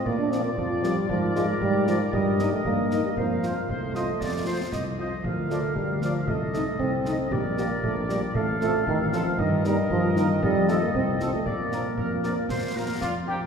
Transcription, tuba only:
X:1
M:2/4
L:1/8
Q:1/4=116
K:Bb
V:1 name="Tuba" clef=bass
B,,2 F,,2 | _A,,2 A,,2 | G,,2 G,,2 | F,,2 C,,2 |
F,,2 C,,2 | D,,2 D,,2 | C,,2 C,,2 | B,,,2 B,,,2 |
A,,,2 A,,,2 | G,,2 G,,2 | F,,2 C,,2 | B,,2 F,,2 |
B,,2 F,,2 |]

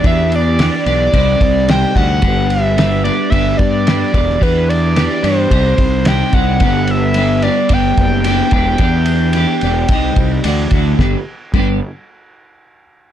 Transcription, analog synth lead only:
X:1
M:4/4
L:1/8
Q:1/4=110
K:G
V:1 name="Analog synth lead"
e d2 d3 g f- | f e2 d e d3 | B d2 c3 g f- | f e2 d g4- |
g6 z2 | z8 |]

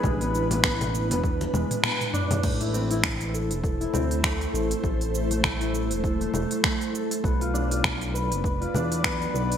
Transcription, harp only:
X:1
M:4/4
L:1/16
Q:"Swing 16ths" 1/4=100
K:Am
V:1 name="Harp"
^G, B, z B, B,3 B, z2 G,2 B,2 D D | A, E C E3 A z A E C z A,2 A z | A z2 A, A, E3 A A, A,2 A,2 A z | B, F D F3 B z B F D z B,2 B z |]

